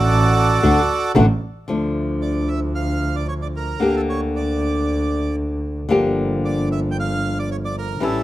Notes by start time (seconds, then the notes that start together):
Already playing: A1 F#4 A4 D5
0.63 D2 D3 A3 D4 F#4
1.15 A1 D3 A3 D4 F#4
1.68 D2 D3 F3 A3 D4
2.22 D5
2.48 E5
2.75 F5
3.16 D5
3.28 C#5
3.42 D5
3.56 A#4
3.80 D2 D3 A#3 D4 G4
3.96 A4
4.10 C#5
4.36 D5
5.89 G1 D3 F3 A#3 D4 G4
6.45 D5
6.72 E5
6.91 G5
7.00 F5
7.39 D5
7.51 C#5
7.65 D5
7.78 A#4
8.00 A1 E3 G3 C#4 E4 A4